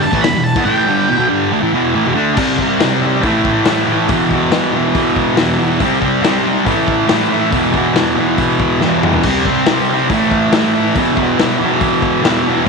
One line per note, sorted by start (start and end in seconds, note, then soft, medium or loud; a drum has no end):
0.02 0.24 A5 loud
0.02 muted distorted electric guitar stroke medium
0.02 open hi-hat medium
0.12 0.23 A2 medium
0.12 0.23 E3 loud
0.12 kick medium
0.21 0.34 E2 medium
0.21 0.42 B5 loud
0.21 snare loud
0.21 open hi-hat medium
0.26 0.35 B2 medium
0.35 0.52 E2 medium
0.35 0.52 B2 medium
0.44 0.64 A5 loud
0.44 open hi-hat medium
0.56 0.65 E3 medium
0.56 0.66 B3 loud
0.56 kick loud
0.56 snare soft
0.65 0.87 A2 loud
0.65 0.87 E3 loud
0.65 0.88 A3 loud
0.65 1.26 G5 loud
0.86 1.08 G2 medium
0.86 1.09 D3 medium
0.86 1.09 G3 loud
1.09 1.19 E2 medium
1.09 1.17 B2 loud
1.19 1.29 B2 loud
1.19 1.30 F#3 loud
1.28 1.50 G2 medium
1.28 1.51 D3 medium
1.28 1.51 G3 loud
1.52 1.61 D3 loud
1.52 1.62 A3 loud
1.61 1.72 A2 medium
1.61 1.73 E3 loud
1.73 1.94 E2 medium
1.73 1.94 B2 loud
1.73 1.95 E3 loud
1.95 2.05 A2 loud
1.95 2.06 E3 loud
2.05 2.16 E2 loud
2.05 2.14 B2 loud
2.15 2.35 D3 medium
2.15 2.37 A3 loud
2.15 2.37 D4 loud
2.35 2.79 C3 loud
2.35 2.62 G3 loud
2.35 2.57 C4 loud
2.35 kick loud
2.35 crash loud
2.58 2.84 C4 medium
2.58 kick medium
2.63 2.81 G3 medium
2.80 3.22 C3 medium
2.80 3.05 G3 medium
2.80 snare loud
2.80 open hi-hat medium
2.85 3.01 C4 medium
3.02 3.22 C4 medium
3.06 3.24 G3 medium
3.22 3.65 A2 loud
3.22 3.69 E3 loud
3.22 kick loud
3.22 open hi-hat medium
3.26 3.71 A3 loud
3.45 kick loud
3.65 4.08 A2 medium
3.65 snare loud
3.65 open hi-hat medium
3.69 3.92 E3 loud
3.69 3.86 A3 loud
3.87 4.08 A3 medium
3.93 4.12 E3 medium
4.08 4.50 E2 loud
4.08 4.34 B2 loud
4.08 kick loud
4.08 open hi-hat medium
4.13 4.29 E3 loud
4.30 4.56 E3 medium
4.30 kick medium
4.35 4.53 B2 medium
4.51 4.95 E2 medium
4.51 4.76 B2 medium
4.51 snare loud
4.51 open hi-hat medium
4.56 4.72 E3 medium
4.72 5.42 E3 medium
4.77 5.39 B2 medium
4.95 kick loud
4.95 open hi-hat medium
5.16 kick loud
5.37 5.79 E2 loud
5.37 5.63 B2 loud
5.37 snare loud
5.37 open hi-hat medium
5.42 5.58 E3 medium
5.59 5.82 E3 medium
5.64 5.80 B2 medium
5.80 6.21 C3 loud
5.80 6.04 G3 loud
5.80 kick loud
5.80 open hi-hat medium
5.84 5.99 C4 loud
6.01 6.26 C4 medium
6.01 kick medium
6.05 6.24 G3 medium
6.23 6.65 C3 medium
6.23 6.47 G3 medium
6.23 snare loud
6.23 open hi-hat medium
6.27 6.42 C4 medium
6.43 6.64 C4 medium
6.48 6.66 G3 medium
6.65 7.05 A2 loud
6.65 7.09 E3 loud
6.65 kick loud
6.65 open hi-hat medium
6.69 7.10 A3 loud
6.88 kick medium
7.06 7.50 A2 medium
7.06 7.33 E3 medium
7.06 snare loud
7.06 open hi-hat medium
7.11 7.28 A3 medium
7.29 7.50 A3 medium
7.34 7.54 E3 medium
7.50 7.93 E2 medium
7.50 7.76 B2 loud
7.50 kick loud
7.50 open hi-hat medium
7.55 7.72 E3 loud
7.73 7.99 E3 medium
7.73 kick medium
7.78 7.96 B2 medium
7.94 8.38 E2 medium
7.94 8.18 B2 medium
7.94 snare loud
7.94 open hi-hat medium
7.99 8.15 E3 medium
8.15 8.85 E3 medium
8.20 8.83 B2 medium
8.38 kick loud
8.38 open hi-hat medium
8.60 kick loud
8.81 9.23 E2 medium
8.81 9.05 B2 loud
8.81 snare medium
8.85 9.01 E3 loud
9.02 9.26 E3 medium
9.02 mid tom loud
9.06 9.23 B2 medium
9.13 floor tom loud
9.23 9.65 C3 loud
9.23 9.49 G3 loud
9.23 kick loud
9.23 crash loud
9.28 9.45 C4 loud
9.45 9.71 C4 medium
9.45 kick medium
9.50 9.68 G3 medium
9.66 10.08 C3 medium
9.66 9.92 G3 medium
9.66 snare loud
9.66 open hi-hat medium
9.72 9.87 C4 medium
9.89 10.09 C4 medium
9.93 10.11 G3 medium
10.10 10.52 A2 loud
10.10 10.55 E3 loud
10.10 kick loud
10.10 open hi-hat medium
10.14 10.56 A3 loud
10.31 kick loud
10.52 10.94 A2 loud
10.52 10.79 E3 medium
10.52 snare loud
10.52 open hi-hat medium
10.57 10.74 A3 loud
10.75 10.94 A3 medium
10.80 10.99 E3 medium
10.95 11.38 E2 loud
10.95 11.21 B2 loud
10.95 kick loud
10.95 open hi-hat medium
11.00 11.17 E3 loud
11.17 11.43 E3 medium
11.17 kick medium
11.22 11.40 B2 medium
11.39 11.81 E2 medium
11.39 11.63 B2 medium
11.39 snare loud
11.39 open hi-hat medium
11.44 11.58 E3 loud
11.59 12.27 E3 medium
11.64 12.24 B2 medium
11.81 kick loud
11.81 open hi-hat medium
12.02 kick loud
12.23 12.65 E2 loud
12.23 12.47 B2 loud
12.23 snare loud
12.23 open hi-hat medium
12.28 12.43 E3 loud
12.43 12.67 E3 medium
12.48 12.64 B2 medium
12.65 12.69 C3 medium